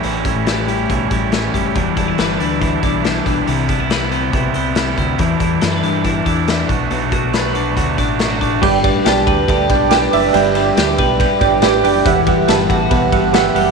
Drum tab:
CC |--------|--------|--------|--------|
RD |--------|--------|--------|--------|
HH |xxxxxxxx|xxxxxxxx|xxxxxxxx|xxxxxxxx|
SD |--o---o-|--o---o-|--o---o-|--o---o-|
BD |-o--oo-o|oo--oo-o|-o--o--o|oo--oo-o|

CC |--------|x-------|--------|--------|
RD |--------|-xxxxxxx|xxxxxxxx|xxxxxxxx|
HH |xxxxxxxx|-------o|p------o|p------o|
SD |--o---o-|--o---o-|--o---o-|--o---o-|
BD |-o--oo-o|oo-ooo--|---ooo--|oo-ooo--|